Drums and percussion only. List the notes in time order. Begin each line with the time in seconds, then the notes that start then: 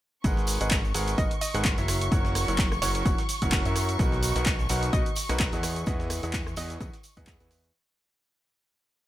0.24 kick, closed hi-hat, tambourine, shaker
0.37 snare, shaker
0.47 closed hi-hat, open hi-hat, tambourine, shaker
0.61 closed hi-hat, tambourine, shaker
0.71 kick, snare, clap, closed hi-hat, tambourine, shaker
0.85 tambourine, shaker
0.94 closed hi-hat, open hi-hat, tambourine, shaker
1.07 snare, closed hi-hat, tambourine, shaker
1.18 kick, closed hi-hat, tambourine, shaker
1.31 closed hi-hat, shaker
1.41 closed hi-hat, open hi-hat, tambourine, shaker
1.54 cross-stick, snare, closed hi-hat, tambourine, shaker
1.65 kick, snare, clap, closed hi-hat, shaker
1.78 snare, closed hi-hat, tambourine, shaker
1.88 cross-stick, closed hi-hat, open hi-hat, tambourine, shaker
2.01 closed hi-hat, tambourine, shaker
2.12 kick, closed hi-hat, tambourine, shaker
2.25 snare, shaker
2.35 cross-stick, closed hi-hat, open hi-hat, tambourine, shaker
2.48 closed hi-hat, tambourine, shaker
2.58 kick, snare, clap, closed hi-hat, tambourine, shaker
2.72 cross-stick, tambourine, shaker
2.82 closed hi-hat, open hi-hat, tambourine, shaker
2.95 snare, closed hi-hat, tambourine, shaker
3.05 kick, closed hi-hat, tambourine, shaker
3.18 snare, closed hi-hat, shaker
3.29 closed hi-hat, open hi-hat, tambourine, shaker
3.42 kick, closed hi-hat, tambourine, shaker
3.52 kick, snare, clap, closed hi-hat, tambourine, shaker
3.65 closed hi-hat, tambourine, shaker
3.76 cross-stick, closed hi-hat, open hi-hat, tambourine, shaker
3.89 closed hi-hat, tambourine, shaker
3.99 kick, closed hi-hat, tambourine, shaker
4.12 snare, shaker
4.23 closed hi-hat, open hi-hat, tambourine, shaker
4.36 closed hi-hat, tambourine, shaker
4.46 kick, snare, clap, closed hi-hat, tambourine, shaker
4.59 tambourine, shaker
4.69 closed hi-hat, open hi-hat, tambourine, shaker
4.83 snare, closed hi-hat, tambourine, shaker
4.93 kick, closed hi-hat, tambourine, shaker
5.06 closed hi-hat, shaker
5.16 closed hi-hat, open hi-hat, tambourine, shaker
5.29 cross-stick, snare, closed hi-hat, tambourine, shaker
5.40 kick, snare, clap, closed hi-hat, tambourine, shaker
5.52 snare, closed hi-hat, tambourine, shaker
5.63 cross-stick, closed hi-hat, open hi-hat, tambourine, shaker
5.76 closed hi-hat, tambourine, shaker
5.86 kick, closed hi-hat, tambourine, shaker
6.00 snare, shaker
6.10 cross-stick, closed hi-hat, open hi-hat, tambourine, shaker
6.23 closed hi-hat, tambourine, shaker
6.33 kick, snare, clap, closed hi-hat, tambourine, shaker
6.47 cross-stick, tambourine, shaker
6.56 closed hi-hat, open hi-hat, tambourine, shaker
6.70 snare, closed hi-hat, tambourine, shaker
6.80 kick, closed hi-hat, tambourine, shaker
6.93 snare, closed hi-hat, shaker
7.03 closed hi-hat, open hi-hat, tambourine, shaker
7.17 kick, closed hi-hat, shaker
7.27 kick, snare, clap, closed hi-hat, tambourine, shaker
7.40 closed hi-hat, tambourine, shaker
7.51 cross-stick, closed hi-hat, open hi-hat, tambourine, shaker
7.64 closed hi-hat, shaker